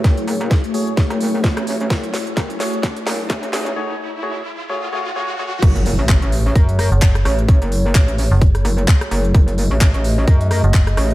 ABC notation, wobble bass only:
X:1
M:4/4
L:1/16
Q:"Swing 16ths" 1/4=129
K:F#dor
V:1 name="Wobble bass" clef=bass
F,,,2 F,,, F,,,2 z4 F,,,4 A,,,3 | F,,,2 z2 F,,,2 z4 F,,,2 A,,,4 | z16 | F,,,3 A,,,2 A,,,3 F,,3 z3 A,,,2- |
A,,, F,,,3 A,,,3 z3 F,,,2 z2 F,,,2 | F,,,3 A,,,2 A,,,3 F,,3 z3 A,,,2 |]